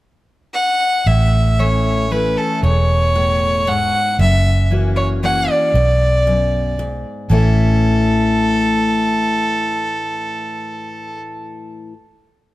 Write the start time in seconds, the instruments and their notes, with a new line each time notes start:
0.54 fiddle F#5
1.06 fingered electric bass A1, steel-string acoustic guitar A2, fiddle E5
1.59 steel-string acoustic guitar E3 A3 C#4 E4, fiddle C#5
2.11 steel-string acoustic guitar E3 A3 C#4 E4, fiddle B4
2.38 fiddle A4
2.63 fingered electric bass E1, steel-string acoustic guitar E2, fiddle C#5
3.16 steel-string acoustic guitar A2
3.67 steel-string acoustic guitar G#2, fiddle F#5
4.19 fingered electric bass F#1, steel-string acoustic guitar F#2, fiddle E5
4.71 steel-string acoustic guitar E3 A#3 C#4 F#4
4.96 fiddle C#5
5.23 steel-string acoustic guitar E3 A#3 C#4 F#4, fiddle F#5
5.51 fiddle D5
5.74 fingered electric bass B1, steel-string acoustic guitar B2
6.27 steel-string acoustic guitar F#2
6.79 steel-string acoustic guitar G#2
7.30 fingered electric bass A1, steel-string acoustic guitar A2 E3 A3 C#4 E4, fiddle A4